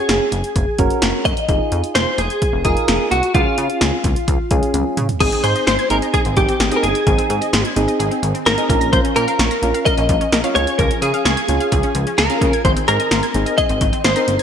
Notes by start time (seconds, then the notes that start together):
Already playing: C#4 F#4 G#4
0.09 F#1, snare, closed hi-hat
0.32 F#1, closed hi-hat
0.44 closed hi-hat
0.56 F#1, kick, closed hi-hat
0.79 F#1 C#4 F#4 A#4, kick, closed hi-hat
0.90 closed hi-hat
1.02 F#1, snare, closed hi-hat
1.25 F#2 D#5, kick, closed hi-hat
1.37 closed hi-hat
1.49 F1 D#4 F4 G#4, kick, closed hi-hat
1.72 F2, closed hi-hat
1.84 closed hi-hat
1.95 F1 C5, snare, closed hi-hat
2.18 F1 G#4, closed hi-hat
2.30 closed hi-hat
2.42 kick, closed hi-hat
2.53 F1
2.65 F1 D#4 F4 G#4 A#4, kick, closed hi-hat
2.77 closed hi-hat
2.88 F1, snare, closed hi-hat
3.11 C2 F#4, closed hi-hat
3.23 closed hi-hat
3.34 C#2 C#4 F4 G#4, kick, closed hi-hat
3.58 C#3, closed hi-hat
3.70 closed hi-hat
3.81 C#2, snare, closed hi-hat
4.04 C#2, kick, closed hi-hat
4.16 closed hi-hat
4.28 C#2, kick, closed hi-hat
4.51 C#2 C#4 F4 G#4, kick, closed hi-hat
4.63 closed hi-hat
4.74 C#2, closed hi-hat, high tom
4.97 C#3, closed hi-hat, mid tom
5.09 closed hi-hat, floor tom
5.20 G#1 D#3 C4 D#4 G#4, kick, closed hi-hat, crash
5.32 C4, closed hi-hat
5.44 G#2 G#4 C5, closed hi-hat
5.55 D#5, closed hi-hat
5.67 G#1 C5 C6, snare, closed hi-hat
5.79 G#6, closed hi-hat
5.90 G#1 C4 D#4 G#4 A#4, closed hi-hat
6.02 D#5, closed hi-hat
6.14 G#4, kick, closed hi-hat
6.25 G#1 C4, closed hi-hat
6.37 G#1 D#3 G4, kick, closed hi-hat
6.49 C4, closed hi-hat
6.60 G#1 G#4, snare, closed hi-hat
6.72 C4 D#4 G#4 D#5, closed hi-hat
6.76 A#4
6.83 G1 G#4, closed hi-hat
6.95 G#6, closed hi-hat
7.07 G#1 D#3 C4 D#4 G#4, kick, closed hi-hat
7.18 C4, closed hi-hat
7.30 G#2 G#4, closed hi-hat
7.41 D#5, closed hi-hat
7.53 G#1 C6, snare, closed hi-hat
7.65 G#6, closed hi-hat
7.76 G#1 C4 D#4 G#4, closed hi-hat
7.88 D#5, closed hi-hat
8.00 G#1 G#4, closed hi-hat
8.11 C4, closed hi-hat
8.23 G#1 D#3, closed hi-hat
8.35 C4, closed hi-hat
8.46 G#1 G#4 A#4, snare, closed hi-hat
8.58 C4 D#4 G#4 D#5, closed hi-hat
8.69 A#1 C#4 F4 A#4, kick, closed hi-hat
8.81 A#6, closed hi-hat
8.93 F3 C5, kick, closed hi-hat
9.04 C#4, closed hi-hat
9.16 A#2 A#4, closed hi-hat
9.28 F5, closed hi-hat
9.39 A#1 C#6, snare, closed hi-hat
9.51 A#6, closed hi-hat
9.62 A#1 C#4 F4 A#4, closed hi-hat
9.74 F5, closed hi-hat
9.85 A#4 D#5, kick, closed hi-hat
9.97 A#1 C#4, closed hi-hat
10.09 A#1 F3, kick, closed hi-hat
10.21 C#4, closed hi-hat
10.32 A#1 A#4, snare, closed hi-hat
10.44 C#4 F4 C#5 F5, closed hi-hat
10.55 C#2 C#4 F4 G#4 C#5, closed hi-hat
10.67 G#6, closed hi-hat
10.78 C#2 F3 A#4, kick, closed hi-hat
10.91 C#4, closed hi-hat
11.02 C#3 G#4, closed hi-hat
11.14 F5, closed hi-hat
11.25 C#2 G#4 C#6, snare, closed hi-hat
11.37 G#6, closed hi-hat
11.48 C#2 C#4 F4 G#4, closed hi-hat
11.60 F5, closed hi-hat
11.72 C#2 G#4, kick, closed hi-hat
11.83 C#4, closed hi-hat
11.95 C#2 F3, closed hi-hat
12.07 C#4, closed hi-hat
12.18 C#2 G#4 A#4, snare, closed hi-hat
12.30 C#4 F4 G#4 F5, closed hi-hat
12.41 C#3, kick, closed hi-hat
12.53 G#6, closed hi-hat
12.65 G#1 D#3 C4 D#4 G#4 C5, kick, closed hi-hat
12.77 C4, closed hi-hat
12.88 G#2 G#4 A#4, closed hi-hat
13.00 D#5, closed hi-hat
13.11 G#1 C6, snare, closed hi-hat
13.23 G#6, closed hi-hat
13.34 G#1 C4 D#4 G#4, closed hi-hat
13.46 D#5, closed hi-hat
13.58 G#4 D#5, kick, closed hi-hat
13.69 G#1 C4, closed hi-hat
13.81 G#1 D#3, kick, closed hi-hat
13.93 C4, closed hi-hat
14.04 G#1 G#4 C5, snare, closed hi-hat
14.16 C4 D#4 A#4 D#5, closed hi-hat
14.28 G1, closed hi-hat
14.39 G#6, closed hi-hat